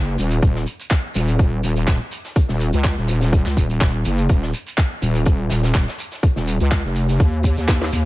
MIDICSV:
0, 0, Header, 1, 4, 480
1, 0, Start_track
1, 0, Key_signature, -6, "minor"
1, 0, Tempo, 483871
1, 422, Time_signature, 4, 2, 24, 8
1, 7989, End_track
2, 0, Start_track
2, 0, Title_t, "Wobble bass"
2, 0, Program_c, 0, 39
2, 0, Note_on_c, 0, 30, 98
2, 163, Note_off_c, 0, 30, 0
2, 181, Note_on_c, 0, 27, 99
2, 403, Note_off_c, 0, 27, 0
2, 421, Note_on_c, 0, 27, 97
2, 643, Note_off_c, 0, 27, 0
2, 1142, Note_on_c, 0, 27, 96
2, 1604, Note_off_c, 0, 27, 0
2, 1621, Note_on_c, 0, 27, 99
2, 1844, Note_off_c, 0, 27, 0
2, 1861, Note_on_c, 0, 27, 96
2, 1970, Note_off_c, 0, 27, 0
2, 2471, Note_on_c, 0, 27, 99
2, 2690, Note_off_c, 0, 27, 0
2, 2711, Note_on_c, 0, 37, 96
2, 2930, Note_off_c, 0, 37, 0
2, 2951, Note_on_c, 0, 27, 97
2, 3410, Note_off_c, 0, 27, 0
2, 3430, Note_on_c, 0, 37, 102
2, 3523, Note_off_c, 0, 37, 0
2, 3540, Note_on_c, 0, 27, 98
2, 3763, Note_off_c, 0, 27, 0
2, 3781, Note_on_c, 0, 27, 96
2, 4003, Note_off_c, 0, 27, 0
2, 4021, Note_on_c, 0, 30, 102
2, 4243, Note_off_c, 0, 30, 0
2, 4261, Note_on_c, 0, 27, 98
2, 4483, Note_off_c, 0, 27, 0
2, 4980, Note_on_c, 0, 27, 92
2, 5443, Note_off_c, 0, 27, 0
2, 5459, Note_on_c, 0, 27, 98
2, 5683, Note_off_c, 0, 27, 0
2, 5701, Note_on_c, 0, 27, 95
2, 5810, Note_off_c, 0, 27, 0
2, 6310, Note_on_c, 0, 27, 99
2, 6530, Note_off_c, 0, 27, 0
2, 6550, Note_on_c, 0, 37, 93
2, 6770, Note_off_c, 0, 37, 0
2, 6791, Note_on_c, 0, 29, 94
2, 7124, Note_off_c, 0, 29, 0
2, 7141, Note_on_c, 0, 39, 100
2, 7490, Note_off_c, 0, 39, 0
2, 7511, Note_on_c, 0, 39, 95
2, 7844, Note_off_c, 0, 39, 0
2, 7862, Note_on_c, 0, 39, 99
2, 7989, Note_off_c, 0, 39, 0
2, 7989, End_track
3, 0, Start_track
3, 0, Title_t, "Shekere"
3, 189, Note_on_c, 9, 82, 97
3, 288, Note_off_c, 9, 82, 0
3, 309, Note_on_c, 9, 82, 51
3, 408, Note_off_c, 9, 82, 0
3, 415, Note_on_c, 9, 82, 35
3, 514, Note_off_c, 9, 82, 0
3, 661, Note_on_c, 9, 82, 90
3, 760, Note_off_c, 9, 82, 0
3, 798, Note_on_c, 9, 82, 55
3, 897, Note_off_c, 9, 82, 0
3, 898, Note_on_c, 9, 82, 43
3, 997, Note_off_c, 9, 82, 0
3, 1142, Note_on_c, 9, 82, 100
3, 1241, Note_off_c, 9, 82, 0
3, 1272, Note_on_c, 9, 82, 53
3, 1371, Note_off_c, 9, 82, 0
3, 1384, Note_on_c, 9, 82, 43
3, 1483, Note_off_c, 9, 82, 0
3, 1624, Note_on_c, 9, 82, 95
3, 1724, Note_off_c, 9, 82, 0
3, 1751, Note_on_c, 9, 82, 54
3, 1850, Note_off_c, 9, 82, 0
3, 1862, Note_on_c, 9, 82, 35
3, 1962, Note_off_c, 9, 82, 0
3, 2101, Note_on_c, 9, 82, 104
3, 2200, Note_off_c, 9, 82, 0
3, 2233, Note_on_c, 9, 82, 50
3, 2333, Note_off_c, 9, 82, 0
3, 2342, Note_on_c, 9, 82, 36
3, 2441, Note_off_c, 9, 82, 0
3, 2583, Note_on_c, 9, 82, 91
3, 2682, Note_off_c, 9, 82, 0
3, 2713, Note_on_c, 9, 82, 54
3, 2812, Note_off_c, 9, 82, 0
3, 2824, Note_on_c, 9, 82, 36
3, 2924, Note_off_c, 9, 82, 0
3, 3056, Note_on_c, 9, 82, 92
3, 3155, Note_off_c, 9, 82, 0
3, 3189, Note_on_c, 9, 82, 55
3, 3288, Note_off_c, 9, 82, 0
3, 3308, Note_on_c, 9, 82, 36
3, 3407, Note_off_c, 9, 82, 0
3, 3544, Note_on_c, 9, 82, 85
3, 3643, Note_off_c, 9, 82, 0
3, 3671, Note_on_c, 9, 82, 56
3, 3770, Note_off_c, 9, 82, 0
3, 3780, Note_on_c, 9, 82, 37
3, 3880, Note_off_c, 9, 82, 0
3, 4018, Note_on_c, 9, 82, 82
3, 4117, Note_off_c, 9, 82, 0
3, 4151, Note_on_c, 9, 82, 48
3, 4251, Note_off_c, 9, 82, 0
3, 4261, Note_on_c, 9, 82, 41
3, 4360, Note_off_c, 9, 82, 0
3, 4502, Note_on_c, 9, 82, 84
3, 4601, Note_off_c, 9, 82, 0
3, 4637, Note_on_c, 9, 82, 54
3, 4736, Note_off_c, 9, 82, 0
3, 4744, Note_on_c, 9, 82, 41
3, 4843, Note_off_c, 9, 82, 0
3, 4984, Note_on_c, 9, 82, 88
3, 5083, Note_off_c, 9, 82, 0
3, 5110, Note_on_c, 9, 82, 51
3, 5209, Note_off_c, 9, 82, 0
3, 5218, Note_on_c, 9, 82, 37
3, 5317, Note_off_c, 9, 82, 0
3, 5465, Note_on_c, 9, 82, 93
3, 5564, Note_off_c, 9, 82, 0
3, 5595, Note_on_c, 9, 82, 54
3, 5695, Note_off_c, 9, 82, 0
3, 5707, Note_on_c, 9, 82, 38
3, 5806, Note_off_c, 9, 82, 0
3, 5945, Note_on_c, 9, 82, 89
3, 6044, Note_off_c, 9, 82, 0
3, 6069, Note_on_c, 9, 82, 52
3, 6169, Note_off_c, 9, 82, 0
3, 6180, Note_on_c, 9, 82, 41
3, 6279, Note_off_c, 9, 82, 0
3, 6424, Note_on_c, 9, 82, 88
3, 6523, Note_off_c, 9, 82, 0
3, 6552, Note_on_c, 9, 82, 50
3, 6651, Note_off_c, 9, 82, 0
3, 6661, Note_on_c, 9, 82, 39
3, 6760, Note_off_c, 9, 82, 0
3, 6898, Note_on_c, 9, 82, 85
3, 6997, Note_off_c, 9, 82, 0
3, 7033, Note_on_c, 9, 82, 49
3, 7132, Note_off_c, 9, 82, 0
3, 7141, Note_on_c, 9, 82, 43
3, 7240, Note_off_c, 9, 82, 0
3, 7383, Note_on_c, 9, 82, 99
3, 7482, Note_off_c, 9, 82, 0
3, 7514, Note_on_c, 9, 82, 53
3, 7614, Note_off_c, 9, 82, 0
3, 7626, Note_on_c, 9, 82, 40
3, 7725, Note_off_c, 9, 82, 0
3, 7865, Note_on_c, 9, 82, 83
3, 7965, Note_off_c, 9, 82, 0
3, 7989, End_track
4, 0, Start_track
4, 0, Title_t, "Drums"
4, 181, Note_on_c, 9, 46, 108
4, 183, Note_on_c, 9, 42, 75
4, 280, Note_off_c, 9, 46, 0
4, 282, Note_off_c, 9, 42, 0
4, 310, Note_on_c, 9, 42, 65
4, 410, Note_off_c, 9, 42, 0
4, 421, Note_on_c, 9, 36, 119
4, 421, Note_on_c, 9, 42, 94
4, 520, Note_off_c, 9, 36, 0
4, 520, Note_off_c, 9, 42, 0
4, 552, Note_on_c, 9, 38, 62
4, 651, Note_off_c, 9, 38, 0
4, 660, Note_on_c, 9, 46, 107
4, 662, Note_on_c, 9, 42, 67
4, 759, Note_off_c, 9, 46, 0
4, 761, Note_off_c, 9, 42, 0
4, 790, Note_on_c, 9, 42, 67
4, 889, Note_off_c, 9, 42, 0
4, 899, Note_on_c, 9, 39, 118
4, 900, Note_on_c, 9, 42, 53
4, 901, Note_on_c, 9, 36, 117
4, 906, Note_off_c, 9, 42, 0
4, 906, Note_on_c, 9, 38, 119
4, 906, Note_on_c, 9, 42, 83
4, 999, Note_off_c, 9, 39, 0
4, 1000, Note_off_c, 9, 36, 0
4, 1006, Note_off_c, 9, 38, 0
4, 1006, Note_off_c, 9, 42, 0
4, 1140, Note_on_c, 9, 46, 107
4, 1146, Note_on_c, 9, 42, 72
4, 1239, Note_off_c, 9, 46, 0
4, 1245, Note_off_c, 9, 42, 0
4, 1270, Note_on_c, 9, 42, 66
4, 1369, Note_off_c, 9, 42, 0
4, 1377, Note_on_c, 9, 42, 83
4, 1381, Note_off_c, 9, 42, 0
4, 1381, Note_on_c, 9, 36, 121
4, 1381, Note_on_c, 9, 42, 53
4, 1480, Note_off_c, 9, 36, 0
4, 1480, Note_off_c, 9, 42, 0
4, 1619, Note_on_c, 9, 42, 73
4, 1622, Note_on_c, 9, 46, 106
4, 1718, Note_off_c, 9, 42, 0
4, 1721, Note_off_c, 9, 46, 0
4, 1751, Note_on_c, 9, 42, 64
4, 1850, Note_off_c, 9, 42, 0
4, 1859, Note_on_c, 9, 42, 84
4, 1861, Note_on_c, 9, 36, 124
4, 1861, Note_on_c, 9, 39, 116
4, 1862, Note_on_c, 9, 46, 63
4, 1863, Note_on_c, 9, 38, 116
4, 1958, Note_off_c, 9, 42, 0
4, 1960, Note_off_c, 9, 36, 0
4, 1960, Note_off_c, 9, 39, 0
4, 1961, Note_off_c, 9, 46, 0
4, 1962, Note_off_c, 9, 38, 0
4, 2094, Note_on_c, 9, 42, 66
4, 2101, Note_on_c, 9, 46, 105
4, 2194, Note_off_c, 9, 42, 0
4, 2200, Note_off_c, 9, 46, 0
4, 2230, Note_on_c, 9, 38, 49
4, 2231, Note_on_c, 9, 42, 67
4, 2329, Note_off_c, 9, 38, 0
4, 2330, Note_off_c, 9, 42, 0
4, 2340, Note_on_c, 9, 42, 54
4, 2341, Note_on_c, 9, 36, 112
4, 2347, Note_off_c, 9, 42, 0
4, 2347, Note_on_c, 9, 42, 88
4, 2440, Note_off_c, 9, 36, 0
4, 2446, Note_off_c, 9, 42, 0
4, 2465, Note_on_c, 9, 38, 56
4, 2564, Note_off_c, 9, 38, 0
4, 2581, Note_on_c, 9, 46, 102
4, 2587, Note_on_c, 9, 42, 76
4, 2680, Note_off_c, 9, 46, 0
4, 2686, Note_off_c, 9, 42, 0
4, 2710, Note_on_c, 9, 42, 67
4, 2809, Note_off_c, 9, 42, 0
4, 2813, Note_on_c, 9, 38, 113
4, 2819, Note_on_c, 9, 39, 117
4, 2820, Note_on_c, 9, 42, 55
4, 2821, Note_on_c, 9, 36, 118
4, 2826, Note_off_c, 9, 42, 0
4, 2826, Note_on_c, 9, 42, 86
4, 2913, Note_off_c, 9, 38, 0
4, 2919, Note_off_c, 9, 39, 0
4, 2920, Note_off_c, 9, 36, 0
4, 2925, Note_off_c, 9, 42, 0
4, 2951, Note_on_c, 9, 38, 35
4, 3050, Note_off_c, 9, 38, 0
4, 3060, Note_on_c, 9, 46, 105
4, 3064, Note_on_c, 9, 42, 70
4, 3160, Note_off_c, 9, 46, 0
4, 3164, Note_off_c, 9, 42, 0
4, 3190, Note_on_c, 9, 42, 64
4, 3193, Note_on_c, 9, 38, 52
4, 3289, Note_off_c, 9, 42, 0
4, 3292, Note_off_c, 9, 38, 0
4, 3300, Note_on_c, 9, 42, 53
4, 3301, Note_on_c, 9, 36, 119
4, 3303, Note_off_c, 9, 42, 0
4, 3303, Note_on_c, 9, 42, 86
4, 3400, Note_off_c, 9, 36, 0
4, 3402, Note_off_c, 9, 42, 0
4, 3429, Note_on_c, 9, 39, 37
4, 3430, Note_on_c, 9, 46, 60
4, 3431, Note_on_c, 9, 38, 63
4, 3528, Note_off_c, 9, 39, 0
4, 3529, Note_off_c, 9, 46, 0
4, 3531, Note_off_c, 9, 38, 0
4, 3540, Note_on_c, 9, 46, 101
4, 3541, Note_on_c, 9, 36, 61
4, 3542, Note_on_c, 9, 42, 73
4, 3640, Note_off_c, 9, 36, 0
4, 3640, Note_off_c, 9, 46, 0
4, 3642, Note_off_c, 9, 42, 0
4, 3671, Note_on_c, 9, 42, 64
4, 3770, Note_off_c, 9, 42, 0
4, 3779, Note_on_c, 9, 39, 114
4, 3780, Note_on_c, 9, 42, 52
4, 3781, Note_on_c, 9, 36, 120
4, 3782, Note_on_c, 9, 38, 125
4, 3783, Note_off_c, 9, 42, 0
4, 3783, Note_on_c, 9, 42, 82
4, 3879, Note_off_c, 9, 39, 0
4, 3880, Note_off_c, 9, 36, 0
4, 3881, Note_off_c, 9, 38, 0
4, 3882, Note_off_c, 9, 42, 0
4, 4018, Note_on_c, 9, 42, 72
4, 4020, Note_on_c, 9, 46, 103
4, 4117, Note_off_c, 9, 42, 0
4, 4119, Note_off_c, 9, 46, 0
4, 4150, Note_on_c, 9, 42, 69
4, 4249, Note_off_c, 9, 42, 0
4, 4255, Note_on_c, 9, 42, 90
4, 4260, Note_off_c, 9, 42, 0
4, 4260, Note_on_c, 9, 36, 115
4, 4260, Note_on_c, 9, 42, 55
4, 4360, Note_off_c, 9, 36, 0
4, 4360, Note_off_c, 9, 42, 0
4, 4389, Note_on_c, 9, 38, 60
4, 4488, Note_off_c, 9, 38, 0
4, 4496, Note_on_c, 9, 42, 73
4, 4501, Note_on_c, 9, 46, 106
4, 4596, Note_off_c, 9, 42, 0
4, 4600, Note_off_c, 9, 46, 0
4, 4630, Note_on_c, 9, 42, 69
4, 4729, Note_off_c, 9, 42, 0
4, 4733, Note_on_c, 9, 38, 122
4, 4737, Note_on_c, 9, 42, 90
4, 4739, Note_on_c, 9, 39, 122
4, 4740, Note_off_c, 9, 42, 0
4, 4740, Note_on_c, 9, 42, 58
4, 4741, Note_on_c, 9, 36, 117
4, 4832, Note_off_c, 9, 38, 0
4, 4838, Note_off_c, 9, 39, 0
4, 4839, Note_off_c, 9, 42, 0
4, 4840, Note_off_c, 9, 36, 0
4, 4980, Note_on_c, 9, 46, 103
4, 4984, Note_on_c, 9, 42, 67
4, 5079, Note_off_c, 9, 46, 0
4, 5083, Note_off_c, 9, 42, 0
4, 5110, Note_on_c, 9, 42, 66
4, 5209, Note_off_c, 9, 42, 0
4, 5211, Note_on_c, 9, 42, 84
4, 5221, Note_off_c, 9, 42, 0
4, 5221, Note_on_c, 9, 36, 119
4, 5221, Note_on_c, 9, 42, 55
4, 5320, Note_off_c, 9, 36, 0
4, 5320, Note_off_c, 9, 42, 0
4, 5451, Note_on_c, 9, 38, 116
4, 5456, Note_on_c, 9, 42, 87
4, 5460, Note_on_c, 9, 46, 100
4, 5550, Note_off_c, 9, 38, 0
4, 5555, Note_off_c, 9, 42, 0
4, 5560, Note_off_c, 9, 46, 0
4, 5587, Note_on_c, 9, 38, 103
4, 5589, Note_on_c, 9, 42, 75
4, 5591, Note_off_c, 9, 42, 0
4, 5591, Note_on_c, 9, 42, 68
4, 5686, Note_off_c, 9, 38, 0
4, 5690, Note_off_c, 9, 42, 0
4, 5700, Note_on_c, 9, 39, 119
4, 5701, Note_on_c, 9, 36, 115
4, 5701, Note_on_c, 9, 38, 101
4, 5701, Note_on_c, 9, 46, 62
4, 5799, Note_off_c, 9, 39, 0
4, 5800, Note_off_c, 9, 36, 0
4, 5800, Note_off_c, 9, 46, 0
4, 5801, Note_off_c, 9, 38, 0
4, 5833, Note_on_c, 9, 42, 88
4, 5836, Note_on_c, 9, 38, 94
4, 5932, Note_off_c, 9, 42, 0
4, 5933, Note_on_c, 9, 42, 72
4, 5935, Note_off_c, 9, 38, 0
4, 5941, Note_on_c, 9, 46, 105
4, 6033, Note_off_c, 9, 42, 0
4, 6040, Note_off_c, 9, 46, 0
4, 6069, Note_on_c, 9, 38, 47
4, 6072, Note_on_c, 9, 42, 71
4, 6168, Note_off_c, 9, 38, 0
4, 6171, Note_off_c, 9, 42, 0
4, 6181, Note_on_c, 9, 36, 117
4, 6181, Note_on_c, 9, 42, 85
4, 6182, Note_off_c, 9, 42, 0
4, 6182, Note_on_c, 9, 42, 58
4, 6280, Note_off_c, 9, 36, 0
4, 6281, Note_off_c, 9, 42, 0
4, 6309, Note_on_c, 9, 38, 61
4, 6409, Note_off_c, 9, 38, 0
4, 6421, Note_on_c, 9, 46, 102
4, 6423, Note_on_c, 9, 42, 75
4, 6521, Note_off_c, 9, 46, 0
4, 6522, Note_off_c, 9, 42, 0
4, 6552, Note_on_c, 9, 42, 72
4, 6651, Note_off_c, 9, 42, 0
4, 6657, Note_on_c, 9, 38, 111
4, 6660, Note_on_c, 9, 42, 91
4, 6661, Note_on_c, 9, 36, 115
4, 6661, Note_on_c, 9, 39, 127
4, 6662, Note_off_c, 9, 42, 0
4, 6662, Note_on_c, 9, 42, 57
4, 6756, Note_off_c, 9, 38, 0
4, 6760, Note_off_c, 9, 36, 0
4, 6761, Note_off_c, 9, 39, 0
4, 6762, Note_off_c, 9, 42, 0
4, 6795, Note_on_c, 9, 38, 40
4, 6894, Note_off_c, 9, 38, 0
4, 6902, Note_on_c, 9, 42, 69
4, 6902, Note_on_c, 9, 46, 110
4, 7001, Note_off_c, 9, 42, 0
4, 7002, Note_off_c, 9, 46, 0
4, 7032, Note_on_c, 9, 38, 50
4, 7033, Note_on_c, 9, 42, 70
4, 7131, Note_off_c, 9, 38, 0
4, 7132, Note_off_c, 9, 42, 0
4, 7141, Note_on_c, 9, 36, 120
4, 7143, Note_on_c, 9, 42, 56
4, 7144, Note_off_c, 9, 42, 0
4, 7144, Note_on_c, 9, 42, 93
4, 7241, Note_off_c, 9, 36, 0
4, 7243, Note_off_c, 9, 42, 0
4, 7273, Note_on_c, 9, 46, 62
4, 7372, Note_off_c, 9, 46, 0
4, 7372, Note_on_c, 9, 42, 85
4, 7381, Note_on_c, 9, 36, 63
4, 7383, Note_on_c, 9, 46, 102
4, 7471, Note_off_c, 9, 42, 0
4, 7481, Note_off_c, 9, 36, 0
4, 7483, Note_off_c, 9, 46, 0
4, 7512, Note_on_c, 9, 38, 54
4, 7513, Note_on_c, 9, 42, 68
4, 7612, Note_off_c, 9, 38, 0
4, 7612, Note_off_c, 9, 42, 0
4, 7622, Note_on_c, 9, 36, 123
4, 7623, Note_on_c, 9, 39, 127
4, 7624, Note_on_c, 9, 38, 64
4, 7624, Note_on_c, 9, 42, 57
4, 7721, Note_off_c, 9, 36, 0
4, 7722, Note_off_c, 9, 39, 0
4, 7723, Note_off_c, 9, 38, 0
4, 7723, Note_off_c, 9, 42, 0
4, 7753, Note_on_c, 9, 38, 61
4, 7853, Note_off_c, 9, 38, 0
4, 7863, Note_on_c, 9, 46, 105
4, 7864, Note_on_c, 9, 42, 74
4, 7962, Note_off_c, 9, 46, 0
4, 7963, Note_off_c, 9, 42, 0
4, 7989, End_track
0, 0, End_of_file